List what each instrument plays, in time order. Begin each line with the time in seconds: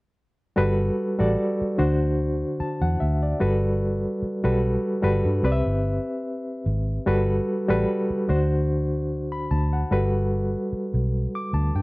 0.56 fingered electric bass G1, reed electric piano G3 F#4 A4 B4
1.19 fingered electric bass A1, reed electric piano G3 F#4 A4 D5
1.61 muted fingered electric bass stroke
1.78 fingered electric bass D2, reed electric piano D3 D4 F#4 C5
2.60 reed electric piano A5, muted fingered electric bass stroke
2.81 fingered electric bass E2, reed electric piano F#5
3.00 fingered electric bass D2, reed electric piano E5
3.23 reed electric piano D5
3.40 fingered electric bass G1, reed electric piano G3 F#4 A4 B4
4.22 muted fingered electric bass stroke
4.44 fingered electric bass B1, reed electric piano G3 F#4 A4 B4
5.02 fingered electric bass G1, reed electric piano G3 F#4 A4 B4
5.25 fingered electric bass G2
5.43 fingered electric bass C2, reed electric piano C4 G4 B4 D5
5.52 reed electric piano E5
5.66 fingered electric bass G1
6.66 fingered electric bass G#1
7.06 fingered electric bass G1, reed electric piano G3 F#4 A4 B4
7.69 fingered electric bass A1, reed electric piano G3 F#4 A4 B4
8.10 muted fingered electric bass stroke
8.28 fingered electric bass D2, reed electric piano D3 D4 F#4 C5
9.32 reed electric piano B5
9.51 fingered electric bass D2, reed electric piano A5
9.73 reed electric piano F#5
9.91 fingered electric bass G1, reed electric piano G3 F#4 A4 B4
10.73 muted fingered electric bass stroke
10.94 fingered electric bass B1
11.35 reed electric piano D6
11.53 fingered electric bass D2, reed electric piano A5
11.75 fingered electric bass G2, reed electric piano G5